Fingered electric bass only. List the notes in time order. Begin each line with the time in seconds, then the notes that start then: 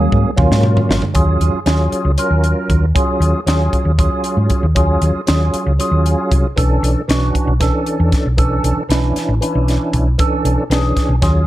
0.12 G#2
0.38 D#2
0.51 G#2
0.89 G#1
1.15 D#2
1.40 D#2
1.54 muted fingered electric bass stroke
1.66 D#2
1.92 muted fingered electric bass stroke
2.05 C#2
2.31 D#2
2.70 D#2
3.20 D#2
3.47 D#2
3.85 D#2
4.37 G#2
4.50 muted fingered electric bass stroke
4.63 D#2
5.01 D#2
5.15 muted fingered electric bass stroke
5.28 D#2
5.54 muted fingered electric bass stroke
5.67 C#2
5.91 D#2
6.32 C2
6.57 B1
6.83 B1
7.09 B1
7.35 muted fingered electric bass stroke
7.47 B1
8.00 E2
8.13 muted fingered electric bass stroke
8.26 B1
8.64 B1
8.77 muted fingered electric bass stroke
8.89 B1
9.16 muted fingered electric bass stroke
9.29 A1
9.55 B1
9.93 B1
10.45 B1
10.70 B1
10.97 muted fingered electric bass stroke
11.09 B1
11.22 D#2